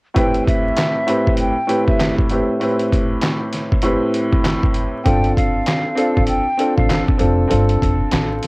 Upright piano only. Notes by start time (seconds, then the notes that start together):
0.14 A2 C4 E4 G4 B4
1.07 A2 C4 E4 G4 B4
1.67 A2 C4 E4 G4 B4
2.30 A2 C4 E4 G4 B4
2.60 A2 C4 E4 G4 B4
3.83 A2 C4 E4 G4 B4
5.04 C4 D4 F4 A4
5.95 C4 D4 F4 A4
6.57 C4 D4 F4 A4
7.17 C4 D4 F4 A4
7.48 C4 D4 F4 A4